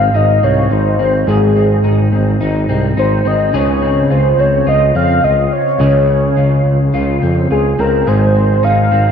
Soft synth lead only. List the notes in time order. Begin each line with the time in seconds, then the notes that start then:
Already playing: F5
0.16 D#5
0.44 C#5
0.72 C5
1.29 G#4
2.99 C5
3.27 D#5
3.56 C#5
4.12 C5
4.40 C#5
4.69 D#5
4.96 F5
5.24 D#5
5.53 C#5
7.51 G#4
7.80 A#4
8.08 C5
8.64 F5